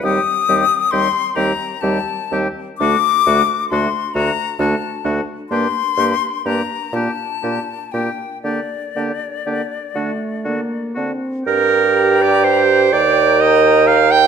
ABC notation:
X:1
M:6/8
L:1/16
Q:3/8=42
K:Gm
V:1 name="Flute"
e'4 c'2 b2 a4 | d'4 c'2 b2 a2 z2 | c'4 b2 a4 g2 | d8- d2 z2 |
b6 b6 |]
V:2 name="Oboe"
G2 G2 G2 G2 G2 G2 | ^F2 F2 F2 F2 F2 F2 | G2 G2 G2 G2 G2 G2 | G2 G2 G2 ^F2 F2 F2 |
g12 |]
V:3 name="Clarinet"
C2 C2 C2 C2 C2 C2 | D2 D2 D2 D2 D2 D2 | D2 D2 D2 D2 D2 D2 | D2 D2 D2 D2 D2 D2 |
B3 d c2 d2 e2 f g |]
V:4 name="French horn"
G,2 G,2 G,2 G,2 G,2 G,2 | A,2 A,2 A,2 A,2 A,2 A,2 | B,2 B,2 B,2 B,2 B,2 B,2 | B,2 B,2 B,2 A,2 B,2 C2 |
G6 B6 |]
V:5 name="Bassoon" clef=bass
E,,2 E,,2 E,,2 E,,2 E,,2 E,,2 | D,,2 D,,2 D,,2 D,,2 D,,2 D,,2 | G,,2 G,,2 G,,2 B,,2 B,,2 B,,2 | D,2 D,2 D,2 D,2 D,2 D,2 |
G,,6 E,,6 |]